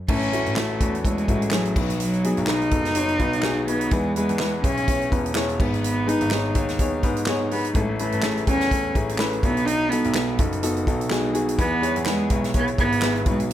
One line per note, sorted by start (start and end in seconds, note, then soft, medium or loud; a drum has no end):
0.09 0.43 A1 loud
0.09 0.77 A2 medium
0.09 0.30 A3 medium
0.09 0.31 C#4 medium
0.09 0.59 C#4 loud
0.09 0.31 E4 medium
0.09 0.31 A4 medium
0.09 kick loud
0.09 crash medium
0.22 closed hi-hat soft
0.32 0.54 A3 medium
0.32 0.54 C#4 medium
0.32 0.55 E4 medium
0.32 0.55 F#4 medium
0.32 closed hi-hat medium
0.46 0.80 A1 medium
0.46 closed hi-hat soft
0.56 0.78 A3 medium
0.56 1.05 A3 medium
0.56 0.79 C#4 medium
0.56 0.79 E4 medium
0.56 0.79 F#4 medium
0.56 snare loud
0.56 clap medium
0.80 1.25 E2 medium
0.80 1.02 A3 medium
0.80 1.02 C#4 medium
0.80 1.03 E4 medium
0.80 1.03 F#4 medium
0.80 kick medium
0.80 closed hi-hat medium
0.95 closed hi-hat soft
1.04 1.54 G#3 medium
1.04 1.26 A3 medium
1.04 1.27 C#4 medium
1.04 1.27 E4 medium
1.04 1.26 A4 medium
1.04 kick medium
1.04 closed hi-hat medium
1.18 closed hi-hat soft
1.28 1.73 A1 medium
1.28 1.50 A3 medium
1.28 1.51 C#4 medium
1.28 1.50 E4 medium
1.28 1.51 F#4 medium
1.28 kick medium
1.28 closed hi-hat medium
1.42 closed hi-hat soft
1.51 2.00 F#3 medium
1.51 1.74 A3 medium
1.51 1.75 C#4 medium
1.51 1.75 E4 medium
1.51 1.75 G#4 medium
1.51 snare loud
1.51 clap medium
1.65 closed hi-hat soft
1.76 2.21 B1 medium
1.76 2.45 B2 medium
1.76 2.20 B3 medium
1.76 2.20 D#4 medium
1.76 2.20 F#4 medium
1.76 2.21 B4 medium
1.76 kick loud
1.76 crash medium
1.90 closed hi-hat soft
2.00 2.45 F#3 loud
2.00 closed hi-hat medium
2.13 closed hi-hat soft
2.24 2.46 B3 medium
2.24 2.46 D#4 medium
2.24 2.46 F#4 medium
2.24 2.46 G#4 medium
2.24 closed hi-hat medium
2.37 2.69 B1 medium
2.37 closed hi-hat soft
2.47 2.69 B3 medium
2.47 2.70 D#4 medium
2.47 3.65 D#4 loud
2.47 2.70 F#4 medium
2.47 2.70 B4 medium
2.47 snare loud
2.47 clap medium
2.62 closed hi-hat soft
2.71 3.20 F#1 medium
2.71 2.94 B3 medium
2.71 2.94 D#4 medium
2.71 2.94 F#4 medium
2.71 2.94 A4 medium
2.71 kick medium
2.71 closed hi-hat medium
2.85 snare soft
2.85 closed hi-hat soft
2.95 3.17 B3 medium
2.95 3.17 D#4 medium
2.95 3.18 F#4 medium
2.95 3.18 C#5 medium
2.95 closed hi-hat medium
3.08 closed hi-hat soft
3.19 3.88 B1 medium
3.19 3.41 B3 medium
3.19 3.41 D#4 medium
3.19 3.42 F#4 medium
3.19 3.42 B4 loud
3.19 kick medium
3.19 closed hi-hat medium
3.33 closed hi-hat medium
3.43 3.66 B3 medium
3.43 3.66 D#4 medium
3.43 3.66 F#4 medium
3.43 3.66 G#4 loud
3.43 snare loud
3.43 clap medium
3.67 3.89 B3 medium
3.67 3.95 B3 medium
3.67 3.90 D#4 medium
3.67 3.90 F#4 medium
3.67 3.90 B4 medium
3.67 closed hi-hat medium
3.81 closed hi-hat soft
3.91 4.27 E2 loud
3.91 4.60 E3 medium
3.91 4.16 G#3 loud
3.91 4.14 B3 medium
3.91 4.14 E4 medium
3.91 4.14 G#4 medium
3.91 4.14 B4 medium
3.91 kick loud
3.91 closed hi-hat medium
4.16 4.61 G#3 medium
4.16 4.38 B3 medium
4.16 4.38 E4 medium
4.16 4.38 G#4 medium
4.16 4.38 B4 loud
4.16 closed hi-hat medium
4.29 4.61 E2 medium
4.29 closed hi-hat soft
4.39 4.62 B3 medium
4.39 4.62 E4 medium
4.39 4.62 G#4 medium
4.39 4.62 B4 medium
4.39 snare loud
4.39 clap medium
4.63 5.08 B1 medium
4.63 4.85 B3 medium
4.63 5.32 C#4 medium
4.63 4.86 E4 medium
4.63 4.86 G#4 medium
4.63 4.86 C#5 medium
4.63 kick medium
4.63 closed hi-hat medium
4.77 closed hi-hat soft
4.87 5.09 B3 medium
4.87 5.09 E4 medium
4.87 5.10 G#4 medium
4.87 5.10 C#5 medium
4.87 kick medium
4.87 closed hi-hat medium
5.01 closed hi-hat soft
5.11 5.56 E1 medium
5.11 5.32 B3 medium
5.11 5.33 E4 medium
5.11 5.33 G#4 medium
5.11 5.34 B4 medium
5.11 kick medium
5.11 closed hi-hat medium
5.26 closed hi-hat soft
5.34 5.57 B3 medium
5.34 5.57 E4 medium
5.34 5.57 G#4 medium
5.34 5.57 C#5 loud
5.34 snare loud
5.34 clap loud
5.49 closed hi-hat soft
5.59 6.04 G#1 medium
5.59 6.27 G#2 medium
5.59 6.03 B3 medium
5.59 5.82 B3 medium
5.59 6.03 D#4 medium
5.59 6.03 G#4 medium
5.59 6.04 B4 medium
5.59 kick loud
5.59 crash medium
5.74 closed hi-hat soft
5.84 6.10 B3 medium
5.84 closed hi-hat medium
6.06 6.29 B3 medium
6.06 6.29 D#4 medium
6.06 6.56 D#4 medium
6.06 6.29 G#4 medium
6.06 6.30 B4 loud
6.06 closed hi-hat medium
6.21 6.55 G#1 medium
6.21 closed hi-hat soft
6.31 6.53 B3 medium
6.31 6.54 D#4 medium
6.31 6.54 G#4 medium
6.31 6.54 C#5 medium
6.31 snare loud
6.31 clap medium
6.54 7.00 D#2 medium
6.54 6.77 B3 medium
6.54 6.77 D#4 medium
6.54 6.77 G#4 medium
6.54 6.77 C#5 medium
6.54 kick medium
6.54 closed hi-hat medium
6.68 snare soft
6.68 closed hi-hat soft
6.79 7.01 B3 medium
6.79 7.01 D#4 medium
6.79 7.01 G#4 medium
6.79 7.02 C#5 medium
6.79 kick medium
6.79 closed hi-hat medium
7.03 7.72 G#2 medium
7.03 7.25 B3 medium
7.03 7.25 D#4 medium
7.03 7.25 G#4 medium
7.03 7.25 B4 medium
7.03 kick medium
7.03 closed hi-hat medium
7.16 closed hi-hat medium
7.26 7.49 B3 medium
7.26 7.50 D#4 medium
7.26 7.50 G#4 medium
7.26 7.50 C#5 loud
7.26 snare loud
7.26 clap medium
7.51 7.74 B3 medium
7.51 7.73 B3 medium
7.51 7.74 D#4 medium
7.51 7.74 G#4 medium
7.51 7.74 B4 medium
7.51 open hi-hat medium
7.65 closed hi-hat soft
7.75 8.10 A1 loud
7.75 8.43 A2 medium
7.75 7.84 A3 medium
7.75 7.97 A3 medium
7.75 7.97 C#4 medium
7.75 7.97 E4 medium
7.75 7.98 A4 loud
7.75 kick loud
7.75 closed hi-hat medium
7.82 7.90 G#3 medium
7.89 7.99 A3 medium
7.99 8.21 A3 medium
7.99 8.44 A3 medium
7.99 8.21 C#4 medium
7.99 8.21 E4 medium
7.99 8.22 B4 medium
7.99 closed hi-hat medium
8.12 8.45 A1 medium
8.12 closed hi-hat soft
8.22 8.45 A3 medium
8.22 8.45 C#4 medium
8.22 8.45 E4 medium
8.22 8.46 G#4 medium
8.22 snare loud
8.22 clap medium
8.37 closed hi-hat soft
8.47 8.92 E2 medium
8.47 8.69 A3 medium
8.47 8.69 C#4 medium
8.47 9.16 C#4 loud
8.47 8.69 E4 medium
8.47 8.69 A4 medium
8.47 kick medium
8.47 closed hi-hat medium
8.61 snare soft
8.61 closed hi-hat soft
8.71 8.93 A3 medium
8.71 8.93 C#4 medium
8.71 8.93 E4 medium
8.71 8.94 A4 medium
8.71 kick medium
8.71 closed hi-hat medium
8.95 9.40 A1 medium
8.95 9.17 A3 medium
8.95 9.17 C#4 medium
8.95 9.17 E4 medium
8.95 9.17 G#4 medium
8.95 kick medium
8.95 closed hi-hat medium
9.09 closed hi-hat medium
9.18 9.41 A3 medium
9.18 9.41 C#4 medium
9.18 9.41 E4 medium
9.18 9.41 B4 loud
9.18 snare loud
9.18 clap medium
9.33 closed hi-hat soft
9.43 9.88 B1 medium
9.43 10.11 B2 medium
9.43 9.87 B3 medium
9.43 9.68 B3 medium
9.43 9.50 D4 medium
9.43 9.87 F#4 medium
9.43 9.88 A4 medium
9.43 kick loud
9.43 closed hi-hat medium
9.50 9.90 D#4 medium
9.57 closed hi-hat soft
9.66 9.91 D#4 loud
9.66 closed hi-hat medium
9.90 10.38 B3 medium
9.90 10.13 B3 medium
9.90 10.14 D#4 medium
9.90 10.14 F#4 medium
9.90 10.14 A4 loud
9.90 closed hi-hat medium
10.04 10.37 B1 medium
10.04 closed hi-hat soft
10.15 10.37 B3 medium
10.15 10.37 D#4 medium
10.15 10.38 F#4 medium
10.15 10.38 A4 medium
10.15 snare loud
10.15 clap medium
10.39 10.84 F#1 medium
10.39 10.61 B3 medium
10.39 10.61 D#4 medium
10.39 10.61 F#4 medium
10.39 10.61 A4 medium
10.39 kick medium
10.39 closed hi-hat medium
10.52 closed hi-hat soft
10.63 10.85 B3 medium
10.63 10.85 D#4 medium
10.63 10.85 F#4 medium
10.63 10.85 A4 loud
10.63 closed hi-hat medium
10.77 closed hi-hat soft
10.87 11.55 B1 medium
10.87 11.08 B3 medium
10.87 11.09 D#4 medium
10.87 11.09 F#4 medium
10.87 11.09 A4 loud
10.87 kick medium
10.87 closed hi-hat medium
11.01 closed hi-hat medium
11.10 11.32 B3 loud
11.10 11.33 D#4 loud
11.10 11.32 F#4 medium
11.10 11.33 G#4 loud
11.10 snare loud
11.10 clap medium
11.34 11.56 B3 medium
11.34 11.56 D#4 medium
11.34 11.56 F#4 medium
11.34 11.56 G#4 loud
11.34 closed hi-hat medium
11.48 closed hi-hat soft
11.58 11.94 E2 loud
11.58 12.27 E3 medium
11.58 11.80 B3 medium
11.58 12.04 B3 loud
11.58 11.80 E4 medium
11.58 11.80 G#4 medium
11.58 11.81 B4 loud
11.58 kick loud
11.58 closed hi-hat medium
11.81 12.04 B3 medium
11.81 12.04 E4 medium
11.81 12.04 G#4 medium
11.81 12.04 C#5 loud
11.81 closed hi-hat medium
11.96 12.28 E2 medium
11.96 closed hi-hat soft
12.05 12.52 G#3 loud
12.05 12.28 B3 medium
12.05 12.28 E4 medium
12.05 12.28 G#4 medium
12.05 12.29 B4 medium
12.05 snare loud
12.05 clap medium
12.30 12.75 B1 medium
12.30 12.52 B3 medium
12.30 12.52 E4 medium
12.30 12.53 G#4 medium
12.30 12.53 B4 medium
12.30 kick medium
12.30 closed hi-hat medium
12.44 snare soft
12.44 closed hi-hat soft
12.54 12.76 B3 medium
12.54 12.67 B3 loud
12.54 12.76 E4 medium
12.54 12.77 G#4 medium
12.54 12.77 C#5 medium
12.54 kick medium
12.54 closed hi-hat medium
12.67 closed hi-hat soft
12.78 13.23 G#1 medium
12.78 13.01 B3 medium
12.78 13.24 B3 loud
12.78 13.01 E4 medium
12.78 13.01 G#4 medium
12.78 13.01 B4 medium
12.78 kick medium
12.78 closed hi-hat medium
12.92 closed hi-hat medium
13.02 13.24 B3 medium
13.02 13.25 E4 medium
13.02 13.25 G#4 medium
13.02 13.25 B4 loud
13.02 snare loud
13.02 clap medium
13.16 closed hi-hat soft
13.26 13.53 B1 medium
13.26 13.53 B2 medium
13.26 13.50 G#3 medium
13.26 13.53 B3 medium
13.26 13.53 D#4 medium
13.26 13.53 F#4 medium
13.26 13.53 B4 medium
13.26 kick loud
13.26 closed hi-hat medium
13.40 closed hi-hat soft